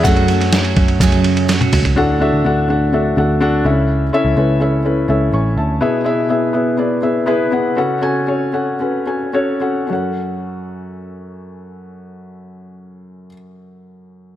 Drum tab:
RD |xxxxxxxxxxxxxxxx|----------------|----------------|----------------|
HH |--------------o-|----------------|----------------|----------------|
SD |---oo-------o---|----------------|----------------|----------------|
T1 |-------------o--|----------------|----------------|----------------|
T2 |--------------o-|----------------|----------------|----------------|
FT |---------------o|----------------|----------------|----------------|
BD |o-----o-o-------|----------------|----------------|----------------|

RD |----------------|----------------|----------------|
HH |----------------|----------------|----------------|
SD |----------------|----------------|----------------|
T1 |----------------|----------------|----------------|
T2 |----------------|----------------|----------------|
FT |----------------|----------------|----------------|
BD |----------------|----------------|----------------|